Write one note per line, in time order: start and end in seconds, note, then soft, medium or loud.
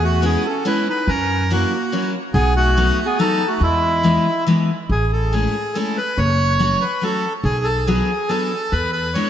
0.00 0.35 E2 medium
0.00 0.22 A3 medium
0.00 0.25 F#4 medium
0.22 0.45 G#3 medium
0.22 0.44 B3 medium
0.22 0.45 B3 medium
0.22 0.44 C#4 medium
0.22 0.44 E4 medium
0.22 0.46 G#4 medium
0.45 0.65 C#4 medium
0.45 0.67 A4 medium
0.65 0.87 G#3 medium
0.65 0.87 B3 medium
0.65 0.87 C#4 medium
0.65 0.86 E4 medium
0.65 0.87 E4 medium
0.65 0.88 B4 medium
0.89 1.07 D#4 medium
0.89 1.10 B4 medium
1.08 1.63 F#2 medium
1.08 1.47 C#4 medium
1.08 1.52 A#4 medium
1.50 1.72 F#3 medium
1.50 1.72 A#3 medium
1.50 2.11 A#3 medium
1.50 1.72 C#4 soft
1.50 1.72 E4 medium
1.50 2.11 F#4 medium
1.92 2.14 F#3 medium
1.92 2.14 A#3 medium
1.92 2.14 C#4 medium
1.92 2.14 E4 medium
2.34 2.89 B1 loud
2.34 2.54 B3 medium
2.34 2.54 G#4 loud
2.56 3.02 A3 medium
2.56 3.07 F#4 loud
2.77 2.98 F#3 medium
2.77 2.99 A3 medium
2.77 2.99 B3 soft
2.77 2.99 D#4 medium
3.05 3.18 B3 medium
3.05 3.19 G#4 medium
3.19 3.41 F#3 medium
3.19 3.41 A3 medium
3.19 3.41 B3 medium
3.19 3.46 D#4 medium
3.19 3.41 D#4 medium
3.19 3.49 A4 loud
3.48 3.61 A3 medium
3.48 3.62 F#4 medium
3.61 4.17 E2 medium
3.61 4.44 G#3 medium
3.61 4.44 E4 medium
4.03 4.26 E3 medium
4.03 4.26 G#3 medium
4.03 4.26 B3 medium
4.03 4.26 D#4 medium
4.47 4.69 E3 medium
4.47 4.69 G#3 medium
4.47 4.69 B3 soft
4.47 4.69 D#4 medium
4.89 5.46 A1 medium
4.89 5.11 G#4 medium
5.13 5.34 A4 medium
5.32 5.55 G#3 medium
5.32 5.55 A3 soft
5.32 5.55 C#4 soft
5.32 5.55 E4 medium
5.32 5.77 G#4 medium
5.74 5.97 G#3 medium
5.74 5.98 A3 medium
5.74 5.98 C#4 soft
5.74 5.97 E4 medium
5.74 5.97 A4 medium
5.97 6.19 B4 medium
6.18 6.73 F#1 medium
6.18 6.84 C#5 medium
6.59 6.82 F#3 medium
6.59 6.82 A3 medium
6.59 6.82 C#4 soft
6.59 6.82 F#4 medium
6.81 7.04 B4 medium
7.01 7.24 F#3 medium
7.01 7.24 A3 medium
7.01 7.24 C#4 soft
7.01 7.24 F#4 medium
7.01 7.33 A4 medium
7.44 7.99 B1 medium
7.44 7.67 G#4 medium
7.64 7.88 A4 medium
7.86 8.09 F#3 medium
7.86 8.09 B3 medium
7.86 8.09 D4 medium
7.86 8.09 F#4 medium
7.86 8.31 G#4 medium
8.29 8.51 F#3 medium
8.29 8.51 B3 medium
8.29 8.52 D4 soft
8.29 8.52 F#4 medium
8.29 8.73 A4 medium
8.72 9.14 E2 medium
8.72 8.91 B4 medium
8.92 9.15 B4 medium
9.14 9.30 G#3 medium
9.14 9.30 B3 soft
9.14 9.30 D4 medium
9.14 9.30 E4 medium
9.14 9.30 C#5 medium